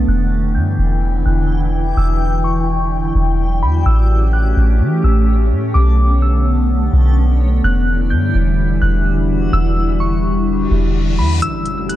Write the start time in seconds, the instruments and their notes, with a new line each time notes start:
Already playing: ambient pad D3
0.08 808-style bass E1, ambient pad E3 E4 G5, synth texture F#3 D5 G5, synth bell F#6
0.55 808-style bass G2, synth bell G6
0.79 808-style bass E1
1.26 808-style bass E1, synth bell F#6
1.97 808-style bass E1, synth bell E6
2.44 synth bell C#6
3.15 808-style bass E1
3.62 808-style bass E2, synth bell B5
3.86 808-style bass A1, ambient pad A3 C#4 G4, synth texture C#4 G4 A5, synth bell E6
4.33 synth bell F#6
4.57 808-style bass A1
4.80 808-style bass E3
5.04 808-style bass A1, synth bell E6
5.51 808-style bass A2
5.74 808-style bass B1, ambient pad D3 B3, synth texture D4, synth bell D6
6.22 synth bell E6
6.93 808-style bass B1
7.64 808-style bass E1, ambient pad E3 G3 E4, synth texture D4 F#4 G4, synth bell F#6
8.10 808-style bass G2, synth bell G6
8.35 808-style bass E1
8.82 808-style bass E1, synth bell F#6
9.53 808-style bass E1, synth bell E6
10.00 synth bell C#6
10.47 reverse cymbal
10.71 808-style bass E1
11.18 808-style bass E2, synth bell B5
11.42 ambient pad A3 C#4 G4, synth texture C#4 A4 G5, synth bell E6, closed hi-hat, impact
11.66 closed hi-hat
11.89 synth bell F#6, closed hi-hat